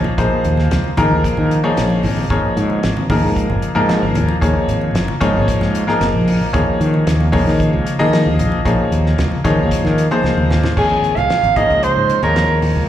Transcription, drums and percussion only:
0.04 high conga
0.18 kick, closed hi-hat
0.44 closed hi-hat
0.57 snare, high conga
0.71 snare, closed hi-hat
0.84 high conga
0.97 kick, closed hi-hat, high conga, low conga
1.24 kick, closed hi-hat
1.37 low conga
1.51 closed hi-hat
1.64 high conga
1.77 snare, closed hi-hat, high conga
1.90 high conga
2.03 open hi-hat, low conga
2.17 low conga
2.30 kick, closed hi-hat
2.57 closed hi-hat
2.70 high conga
2.83 snare, closed hi-hat
2.97 high conga
3.10 kick, open hi-hat, high conga, low conga
3.36 kick, closed hi-hat
3.50 low conga
3.62 closed hi-hat
3.89 snare, closed hi-hat
4.15 closed hi-hat, low conga
4.28 high conga
4.42 kick, closed hi-hat
4.69 closed hi-hat
4.81 high conga
4.95 snare, closed hi-hat
5.08 high conga
5.21 kick, closed hi-hat, high conga, low conga
5.48 kick, closed hi-hat
5.61 snare, low conga
5.75 closed hi-hat
5.88 snare
6.01 snare, closed hi-hat
6.28 open hi-hat, low conga
6.41 high conga
6.54 kick, closed hi-hat
6.81 closed hi-hat
6.94 high conga
7.07 snare, closed hi-hat
7.20 high conga
7.33 kick, open hi-hat, high conga, low conga
7.48 snare
7.60 kick, closed hi-hat
7.86 closed hi-hat
8.13 snare, closed hi-hat
8.39 closed hi-hat, low conga
8.52 high conga
8.66 kick, closed hi-hat
8.92 closed hi-hat
9.06 snare
9.18 snare, closed hi-hat
9.32 high conga
9.45 kick, closed hi-hat, high conga, low conga
9.71 kick, closed hi-hat
9.85 snare, low conga
9.98 closed hi-hat
10.11 high conga
10.24 snare, high conga
10.38 high conga
10.51 snare, low conga
10.63 snare, low conga
10.77 kick, crash
10.90 high conga
11.04 closed hi-hat
11.17 closed hi-hat, high conga
11.30 snare, closed hi-hat
11.43 closed hi-hat
11.56 kick, closed hi-hat, low conga
11.70 closed hi-hat
11.83 closed hi-hat
12.10 closed hi-hat, high conga
12.23 closed hi-hat, high conga
12.36 snare, closed hi-hat
12.62 open hi-hat, low conga

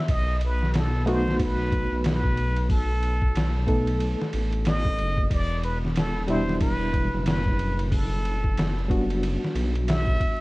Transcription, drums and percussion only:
0.08 kick, ride
0.41 ride
0.63 snare
0.74 snare, ride
1.07 ride
1.28 snare
1.39 kick, ride
1.72 kick, ride
2.04 snare, ride
2.24 kick
2.37 ride
2.56 ride
2.70 kick, open hi-hat
3.03 ride
3.22 kick
3.35 snare, ride
3.68 kick, ride
3.87 ride
4.00 ride
4.22 snare
4.33 ride
4.53 ride
4.65 snare, ride
4.85 kick
4.98 ride
5.18 kick
5.30 kick, ride
5.63 ride
5.85 snare
5.96 snare, ride
6.28 ride
6.49 snare
6.61 kick, ride
6.93 kick, ride
7.26 snare, ride
7.46 kick
7.59 ride
7.79 ride
7.92 kick, open hi-hat
8.25 ride
8.44 kick
8.57 snare, ride
8.90 kick, ride
9.10 ride
9.23 ride
9.44 snare
9.56 ride
9.75 ride
9.88 snare, ride
10.07 kick
10.20 kick, ride

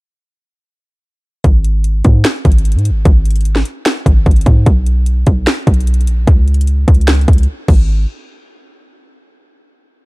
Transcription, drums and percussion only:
1.44 kick, closed hi-hat
1.64 closed hi-hat
1.84 closed hi-hat
2.04 kick, closed hi-hat
2.25 finger snap, snare, closed hi-hat
2.45 kick, closed hi-hat
2.52 closed hi-hat
2.58 closed hi-hat
2.65 closed hi-hat
2.72 closed hi-hat
2.79 closed hi-hat
2.85 closed hi-hat
3.05 kick, closed hi-hat
3.25 closed hi-hat
3.30 closed hi-hat
3.36 closed hi-hat
3.41 closed hi-hat
3.45 closed hi-hat
3.56 snare
3.65 closed hi-hat
3.86 finger snap, snare, closed hi-hat
4.06 kick, closed hi-hat
4.26 kick, closed hi-hat
4.31 closed hi-hat
4.36 closed hi-hat
4.41 closed hi-hat
4.46 kick, closed hi-hat
4.66 kick, closed hi-hat
4.86 closed hi-hat
5.06 closed hi-hat
5.27 kick, closed hi-hat
5.47 finger snap, snare, closed hi-hat
5.67 kick, closed hi-hat
5.74 closed hi-hat
5.81 closed hi-hat
5.87 closed hi-hat
5.94 closed hi-hat
6.01 closed hi-hat
6.07 closed hi-hat
6.27 kick, closed hi-hat
6.48 closed hi-hat
6.54 closed hi-hat
6.61 closed hi-hat
6.67 closed hi-hat
6.88 kick, closed hi-hat
6.95 closed hi-hat
7.01 closed hi-hat
7.08 finger snap, snare, closed hi-hat
7.15 closed hi-hat
7.21 closed hi-hat
7.28 kick, closed hi-hat
7.33 closed hi-hat
7.38 closed hi-hat
7.43 closed hi-hat
7.68 kick, crash

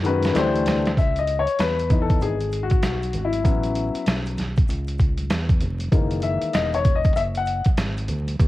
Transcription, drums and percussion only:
0.04 closed hi-hat, maracas
0.23 snare, closed hi-hat, high conga, maracas
0.35 snare, closed hi-hat, high conga, maracas
0.55 closed hi-hat, maracas
0.66 snare, closed hi-hat, low conga, maracas
0.86 snare, closed hi-hat, maracas
0.97 kick, closed hi-hat, maracas
1.16 closed hi-hat, maracas
1.27 closed hi-hat, maracas
1.47 closed hi-hat, maracas
1.59 snare, closed hi-hat, maracas
1.78 closed hi-hat, maracas
1.90 kick, closed hi-hat, low conga, maracas
2.09 kick, closed hi-hat, maracas
2.21 closed hi-hat, maracas
2.40 closed hi-hat, maracas
2.52 closed hi-hat, maracas
2.70 kick, closed hi-hat, high conga, maracas
2.82 snare, closed hi-hat, high conga, maracas
3.02 closed hi-hat, maracas
3.13 closed hi-hat, low conga, maracas
3.33 closed hi-hat, high conga, maracas
3.45 kick, closed hi-hat, maracas
3.63 closed hi-hat, maracas
3.75 closed hi-hat, maracas
3.95 closed hi-hat, maracas
4.06 snare, closed hi-hat, maracas
4.26 closed hi-hat, maracas
4.38 snare, closed hi-hat, low conga, maracas
4.56 kick, closed hi-hat, maracas
4.68 closed hi-hat, maracas
4.87 closed hi-hat, maracas
4.98 kick, closed hi-hat, maracas
5.18 closed hi-hat, high conga, maracas
5.30 snare, closed hi-hat, high conga, maracas
5.49 kick, closed hi-hat, maracas
5.61 closed hi-hat, low conga, maracas
5.80 closed hi-hat, high conga, maracas
5.92 kick, closed hi-hat, maracas
6.11 closed hi-hat, maracas
6.22 closed hi-hat, maracas
6.41 closed hi-hat, maracas
6.53 snare, closed hi-hat, maracas
6.73 closed hi-hat, maracas
6.85 kick, closed hi-hat, low conga, maracas
7.04 kick, closed hi-hat, maracas
7.16 closed hi-hat, maracas
7.35 closed hi-hat, maracas
7.46 closed hi-hat, maracas
7.65 kick, closed hi-hat, high conga, maracas
7.78 snare, closed hi-hat, high conga, maracas
7.97 closed hi-hat, maracas
8.08 closed hi-hat, low conga, maracas
8.28 closed hi-hat, high conga, maracas
8.40 kick, closed hi-hat, maracas

